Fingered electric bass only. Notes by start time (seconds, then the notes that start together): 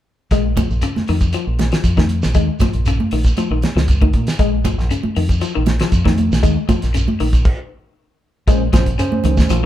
0.31 A#1
0.70 A#1
0.96 muted fingered electric bass stroke
1.09 F2
1.47 A#1
1.84 F2
2.25 A#1
2.35 D#2
2.74 A#1
3.12 A#1
3.50 A#1
3.75 C#2
4.14 A#2
4.39 A#1
4.78 A#1
5.05 muted fingered electric bass stroke
5.17 F2
5.57 A#1
5.92 F2
6.31 A#1
6.43 D#2
6.83 A#1
7.20 A#1
8.47 A#1
8.73 A#1
9.25 C#2
9.50 A#1